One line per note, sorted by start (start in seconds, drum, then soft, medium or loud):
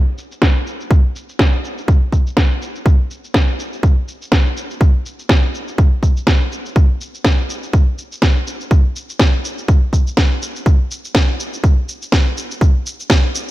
0.18 shaker medium
0.32 shaker soft
0.42 kick loud
0.42 snare loud
0.42 shaker soft
0.67 shaker medium
0.81 shaker soft
0.91 kick loud
0.91 shaker soft
1.16 shaker medium
1.29 shaker soft
1.39 kick loud
1.39 snare loud
1.39 shaker soft
1.64 shaker medium
1.78 shaker soft
1.88 kick loud
1.88 shaker soft
2.12 kick medium
2.12 shaker medium
2.27 shaker soft
2.37 kick loud
2.37 snare loud
2.37 shaker soft
2.62 shaker medium
2.76 shaker soft
2.86 kick loud
2.86 shaker soft
3.11 shaker medium
3.24 shaker soft
3.34 kick loud
3.34 snare loud
3.34 shaker soft
3.59 shaker medium
3.73 shaker soft
3.83 kick loud
3.83 shaker soft
4.08 shaker medium
4.22 shaker soft
4.32 kick loud
4.32 snare loud
4.32 shaker soft
4.57 shaker medium
4.71 shaker soft
4.81 kick loud
4.81 shaker soft
5.06 shaker medium
5.19 shaker soft
5.29 kick loud
5.29 snare loud
5.29 shaker soft
5.54 shaker medium
5.68 shaker soft
5.78 kick loud
5.78 shaker soft
6.03 kick medium
6.03 shaker medium
6.17 shaker soft
6.27 kick loud
6.27 snare loud
6.27 shaker soft
6.52 shaker medium
6.66 shaker soft
6.76 kick loud
6.76 shaker soft
7.01 shaker medium
7.15 shaker soft
7.25 kick loud
7.25 snare loud
7.25 shaker soft
7.50 shaker medium
7.63 shaker soft
7.73 kick loud
7.73 shaker soft
7.98 shaker medium
8.12 shaker soft
8.22 kick loud
8.22 snare loud
8.22 shaker soft
8.47 shaker medium
8.61 shaker soft
8.71 kick loud
8.71 shaker soft
8.96 shaker medium
9.10 shaker soft
9.19 kick loud
9.19 snare loud
9.19 shaker soft
9.45 shaker medium
9.58 shaker soft
9.68 kick loud
9.68 shaker soft
9.93 kick medium
9.93 shaker medium
10.07 shaker soft
10.17 kick loud
10.17 snare loud
10.17 shaker soft
10.42 shaker medium
10.56 shaker soft
10.66 kick loud
10.66 shaker soft
10.91 shaker medium
11.05 shaker soft
11.15 kick loud
11.15 snare loud
11.15 shaker soft
11.40 shaker medium
11.53 shaker soft
11.64 kick loud
11.64 shaker soft
11.89 shaker medium
12.02 shaker soft
12.12 kick loud
12.12 snare loud
12.12 shaker soft
12.37 shaker medium
12.51 shaker soft
12.61 kick loud
12.61 shaker soft
12.86 shaker medium
13.00 shaker soft
13.10 kick loud
13.10 snare loud
13.10 shaker soft
13.35 shaker medium